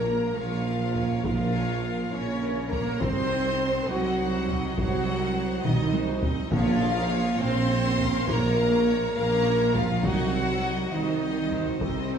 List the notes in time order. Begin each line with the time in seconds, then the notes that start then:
Already playing: A#1 A#2 A#3 A#4 A#5
0.07 A#3 F4 A#4
0.36 A#1 F3 C#4 F4 A#4 C#5 F5
0.66 A#3 F4 A#4
0.96 C#4 A#4 C#5, taiko low
1.24 A#1 F3 A#3 F4 A#4 F5, taiko
1.55 C#4 A#4 C#5
1.83 A#3 F4 A#4
2.13 A#1 C#3 C#4 A#4 C#5
2.43 A#3 F4 A#4
2.71 A#3 C#4 A#4 C#5 A#5, taiko low
3.00 C2 C4 D#4 F#4 C5 C6, taiko
3.29 C4 D#4 D#5
3.60 D#4 F#4 C5
3.88 C2 F#3 C4 D#4 F#4 D#5 F#5
4.18 D#4 F#4 C5
4.48 C4 D#4 D#5, taiko low
4.76 C2 F#3 D#4 F#4 C5 F#5, taiko
5.06 C4 D#4 D#5
5.36 D#4 F#4 C5
5.64 C2 D#3 C4 D#4 D#5, taiko mid
5.93 D#4 F#4 C5, taiko high
6.22 C4 D#4 D#5, taiko low
6.51 A#1 A#2 F3 A#3 F4 C#5 F5, taiko
6.81 C#4 A#4 F5, taiko rim
7.10 C#5
7.14 A#3 F4
7.40 A#1 C4 A#4 C5 F5 C6, taiko rim
7.44 C#4
7.69 A#3 F4 C#5
7.98 A#4 F5, taiko low
8.02 C#4
8.27 A#1 A#3 A#4 C#5 A#5, taiko
8.31 F4
8.56 C#4 F5
8.60 A#4
8.87 A#3 F4 C#5
9.15 A#1 A#3 C#4 A#4 F5 A#5
9.46 A#3 F4 C#5
9.74 F3 C#4 F4 A#4 F5, taiko low
10.03 C2 F#3 D#4 F#4 D#5 F#5, taiko
10.34 C4 F#4 C5
10.62 D#4 D#5
10.92 C2 D#3 C4 D#4 F#4 C5 D#5
11.23 D#4 D#5
11.52 C4 F#4 C5, taiko low
11.81 C2 C3 C4 D#4 C5 D#5, taiko
12.11 C4 F#4 C5